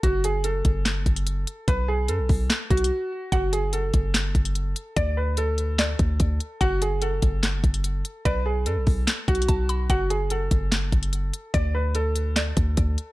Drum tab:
HH |x-----x-----x-----x-----x-----x--x--x-----x-----|x-----------x-----o-----x-----x-x-x-------------|x-----x-----x-----x-----x-----x--x--x-----x-----|x-----------x-----x-----x-----x-----x-----x-----|
CP |------------------------x-----------------------|------------------------x-----------------------|------------------------x-----------------------|------------------------x-----------------------|
SD |------------------------o-----------------------|------------------------o-----------------------|------------------------o-----------------------|------------------------o-----------------------|
BD |o-----------------o-----------o-----------------|o-----------------o-----------o-----------------|o-----------------o-----------o-----------------|o-----------------------------o-----o-----------|

HH |x-----x-----x-----x-----x-----x--x--x-----x-----|x-----------x-----o-----x-----x-x-x-x-----x-----|x-----x-----x-----x-----x-----x--x--x-----x-----|x-----------x-----x-----x-----x-----x-----x-----|
CP |------------------------x-----------------------|------------------------x-----------------------|------------------------x-----------------------|------------------------x-----------------------|
SD |------------------------o-----------------------|------------------------o-----------------------|------------------------o-----------------------|------------------------o-----------------------|
BD |o-----------------o-----------o-----------------|o-----------------o-----------o-----o-----------|o-----------------o-----------o-----------------|o-----------------------------o-----o-----------|